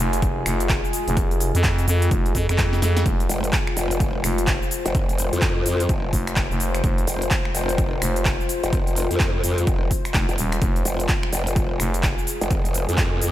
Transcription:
Already playing: ambient pad G#3 F4 G#4
0.00 fm bass F1
0.13 closed hi-hat, shaker
0.22 kick, closed hi-hat, shaker
0.46 fm bass F1, finger snap, open hi-hat, shaker
0.60 closed hi-hat, shaker
0.69 kick, clap, closed hi-hat, shaker
0.85 shaker
0.93 open hi-hat, shaker
1.08 fm bass F1, closed hi-hat, shaker
1.17 kick, closed hi-hat, shaker
1.31 closed hi-hat, shaker
1.40 open hi-hat, shaker
1.55 fm bass F2, closed hi-hat, shaker
1.64 kick, clap, closed hi-hat, shaker
1.78 closed hi-hat, shaker
1.88 fm bass F2, open hi-hat, shaker
2.02 closed hi-hat, shaker
2.11 fm bass F1, kick, closed hi-hat, shaker
2.26 closed hi-hat, shaker
2.35 fm bass F2, kick, open hi-hat, shaker
2.49 fm bass F2, finger snap, closed hi-hat, shaker
2.58 kick, snare, clap, closed hi-hat, shaker
2.73 snare, shaker
2.82 fm bass F2, snare, open hi-hat, shaker
2.97 snare, closed hi-hat, shaker
3.06 fm bass F1, ambient pad C5, kick, closed hi-hat, shaker
3.20 closed hi-hat, shaker
3.29 wobble bass F1, open hi-hat, shaker
3.44 closed hi-hat, shaker
3.53 kick, clap, closed hi-hat, shaker
3.67 finger snap
3.77 wobble bass F1, open hi-hat, shaker
3.91 closed hi-hat, shaker
4.00 kick, closed hi-hat, shaker
4.24 fm bass F1, finger snap, open hi-hat, shaker
4.38 closed hi-hat, shaker
4.47 kick, clap, closed hi-hat, shaker
4.63 shaker
4.71 open hi-hat, shaker
4.86 wobble bass F1, closed hi-hat, shaker
4.95 kick, closed hi-hat, shaker
5.09 closed hi-hat, shaker
5.18 open hi-hat, shaker
5.33 wobble bass F2, closed hi-hat, shaker
5.42 kick, clap, closed hi-hat, shaker
5.66 wobble bass F2, open hi-hat, shaker
5.80 closed hi-hat, shaker
5.89 wobble bass F#1, kick, closed hi-hat, shaker
6.13 fm bass F1, kick, open hi-hat, shaker
6.27 finger snap, closed hi-hat, shaker
6.36 kick, clap, closed hi-hat, shaker
6.51 fm bass F1, shaker
6.60 open hi-hat, shaker
6.75 finger snap, closed hi-hat, shaker
6.84 fm bass F1, kick, closed hi-hat, shaker
6.98 closed hi-hat, shaker
7.07 wobble bass F1, open hi-hat, shaker
7.22 closed hi-hat, shaker
7.31 kick, clap, closed hi-hat, shaker
7.45 finger snap
7.55 wobble bass F1, open hi-hat, shaker
7.69 closed hi-hat, shaker
7.78 kick, closed hi-hat, shaker
8.02 fm bass F1, finger snap, open hi-hat, shaker
8.16 closed hi-hat, shaker
8.25 kick, clap, closed hi-hat, shaker
8.41 shaker
8.49 open hi-hat, shaker
8.63 wobble bass F1, closed hi-hat, shaker
8.73 kick, closed hi-hat, shaker
8.87 closed hi-hat, shaker
8.96 open hi-hat, shaker
9.11 wobble bass F2, closed hi-hat, shaker
9.20 kick, clap, closed hi-hat, shaker
9.44 wobble bass F2, open hi-hat, shaker
9.58 closed hi-hat, shaker
9.67 wobble bass F1, kick, closed hi-hat, shaker
9.91 kick, open hi-hat, shaker
10.05 finger snap, closed hi-hat, shaker
10.14 fm bass F1, kick, clap, closed hi-hat, shaker
10.29 wobble bass F1, closed hi-hat, shaker
10.38 fm bass D#1, open hi-hat, shaker
10.52 finger snap, closed hi-hat, shaker
10.62 fm bass F1, ambient pad G#4, kick, closed hi-hat, shaker
10.76 closed hi-hat, shaker
10.85 wobble bass F1, open hi-hat, shaker
11.00 closed hi-hat, shaker
11.09 kick, clap, closed hi-hat, shaker
11.23 finger snap
11.33 wobble bass F1, open hi-hat, shaker
11.47 closed hi-hat, shaker
11.56 kick, closed hi-hat, shaker
11.80 fm bass F1, finger snap, open hi-hat, shaker
11.94 closed hi-hat, shaker
12.03 kick, clap, closed hi-hat, shaker
12.19 shaker
12.27 open hi-hat, shaker
12.41 wobble bass F1, closed hi-hat, shaker
12.51 kick, closed hi-hat, shaker
12.65 closed hi-hat, shaker
12.74 open hi-hat, shaker
12.89 wobble bass F2, closed hi-hat, shaker
12.98 kick, clap, closed hi-hat, shaker
13.22 wobble bass F2, open hi-hat, shaker

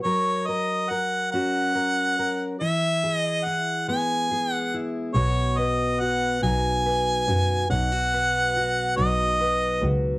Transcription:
0.03 steel-string acoustic guitar F#3 A#4, harmonica C#5
0.47 steel-string acoustic guitar A#4, harmonica D#5
0.90 steel-string acoustic guitar A#4, harmonica F#5
1.32 steel-string acoustic guitar C#4 F#4, harmonica F#5
1.75 steel-string acoustic guitar A#4
2.19 steel-string acoustic guitar A#4
2.60 steel-string acoustic guitar E3 E4, harmonica E5
3.04 steel-string acoustic guitar G#4
3.15 harmonica D#5
3.44 steel-string acoustic guitar E4, harmonica F#5
3.88 steel-string acoustic guitar G#3 B3, harmonica G#5
4.31 steel-string acoustic guitar G#4
4.52 harmonica F#5
4.74 steel-string acoustic guitar E4
5.14 double bass B1, steel-string acoustic guitar B2 F#4, harmonica C#5
5.58 steel-string acoustic guitar B4, harmonica D#5
6.00 steel-string acoustic guitar F#4, harmonica F#5
6.42 double bass B1, steel-string acoustic guitar F#3 D#4, harmonica G#5
6.86 steel-string acoustic guitar B4
7.28 double bass F#2, steel-string acoustic guitar F#4
7.70 double bass B1, steel-string acoustic guitar B2 D#4, harmonica F#5
7.92 steel-string acoustic guitar F#4
8.14 steel-string acoustic guitar B4
8.57 steel-string acoustic guitar F#4
8.97 double bass B1, steel-string acoustic guitar F#3 D#4, harmonica D#5
9.40 steel-string acoustic guitar B4
9.82 double bass C#2, steel-string acoustic guitar F#4

